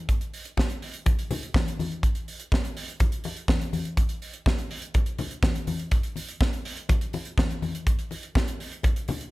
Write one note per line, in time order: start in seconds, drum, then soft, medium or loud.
0.09 kick medium
0.09 closed hi-hat medium
0.21 closed hi-hat soft
0.34 open hi-hat medium
0.45 closed hi-hat medium
0.57 kick medium
0.57 snare medium
0.57 high conga medium
0.70 closed hi-hat soft
0.82 open hi-hat medium
0.94 closed hi-hat soft
1.06 kick loud
1.06 closed hi-hat medium
1.06 muted conga medium
1.19 closed hi-hat soft
1.31 open hi-hat medium
1.31 muted conga medium
1.31 low conga medium
1.43 closed hi-hat soft
1.54 kick loud
1.54 snare loud
1.54 high conga medium
1.68 closed hi-hat soft
1.79 open hi-hat medium
1.79 high conga medium
1.92 closed hi-hat soft
2.03 kick medium
2.03 closed hi-hat medium
2.15 closed hi-hat soft
2.28 open hi-hat medium
2.40 closed hi-hat soft
2.52 kick loud
2.52 snare loud
2.52 high conga medium
2.65 closed hi-hat soft
2.77 open hi-hat medium
2.88 closed hi-hat soft
3.00 kick loud
3.00 closed hi-hat medium
3.00 muted conga medium
3.12 closed hi-hat soft
3.24 open hi-hat medium
3.24 muted conga medium
3.37 closed hi-hat soft
3.48 kick loud
3.48 snare loud
3.48 high conga medium
3.61 closed hi-hat soft
3.73 open hi-hat medium
3.73 high conga medium
3.85 closed hi-hat soft
3.97 kick medium
3.97 closed hi-hat medium
4.09 closed hi-hat soft
4.22 open hi-hat medium
4.34 closed hi-hat medium
4.46 kick loud
4.46 snare medium
4.46 high conga medium
4.58 closed hi-hat soft
4.71 open hi-hat medium
4.82 closed hi-hat soft
4.94 kick loud
4.94 closed hi-hat medium
4.94 muted conga soft
5.06 closed hi-hat soft
5.18 open hi-hat medium
5.18 muted conga medium
5.18 low conga medium
5.31 closed hi-hat soft
5.43 kick loud
5.43 snare loud
5.43 high conga medium
5.55 closed hi-hat soft
5.67 open hi-hat medium
5.67 high conga medium
5.79 closed hi-hat soft
5.91 kick medium
5.91 closed hi-hat medium
6.03 closed hi-hat soft
6.16 open hi-hat medium
6.16 muted conga soft
6.28 closed hi-hat soft
6.41 kick loud
6.41 snare medium
6.41 high conga medium
6.53 closed hi-hat soft
6.65 open hi-hat medium
6.77 closed hi-hat soft
6.89 kick loud
6.89 closed hi-hat medium
6.89 muted conga medium
7.01 closed hi-hat soft
7.13 open hi-hat medium
7.13 muted conga medium
7.25 closed hi-hat soft
7.38 kick loud
7.38 snare loud
7.38 high conga medium
7.50 closed hi-hat soft
7.62 open hi-hat soft
7.62 high conga medium
7.75 closed hi-hat soft
7.87 kick loud
7.87 closed hi-hat medium
7.99 closed hi-hat soft
8.11 open hi-hat medium
8.11 muted conga soft
8.23 closed hi-hat medium
8.35 kick loud
8.35 snare loud
8.35 high conga medium
8.48 closed hi-hat soft
8.60 open hi-hat medium
8.72 closed hi-hat soft
8.83 kick loud
8.83 closed hi-hat medium
8.83 muted conga medium
8.96 closed hi-hat soft
9.08 open hi-hat medium
9.08 muted conga medium
9.08 low conga medium
9.21 closed hi-hat soft